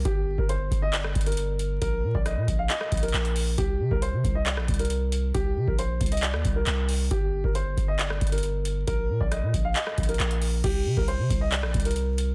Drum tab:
CC |--------------------------------|--------------------------------|--------------------------------|--------------------------------|
HH |x-------x---x---x---xxxxx---x---|x-------x---x---x---xxxxx-x-o---|x-------x---x---x---xxxxx---x---|x-------x---xxxxx---x---x---o---|
CP |----------------x---------------|----------------x-------x-------|----------------x---------------|----------------x-------x-------|
SD |------------------r-------------|--------r---------r-------------|------------------r-------------|------------------r-------------|
BD |o-----o-----o-------o-----------|o-----o-----o-------o-----------|o-----o-----o-------o-----------|o-----o-----o-------o-----------|

CC |--------------------------------|--------------------------------|x-------------------------------|
HH |x-------x---x---x---xxxxx---x---|x-------x---x---x---xxxxx-x-o---|x-------x---x---x---xxxxx---x---|
CP |----------------x---------------|----------------x-------x-------|----------------x---------------|
SD |------------------r-------------|--------r---------r-------------|------------------r-------------|
BD |o-----o-----o-------o-----------|o-----o-----o-------o-----------|o-----o-----o-------o-----------|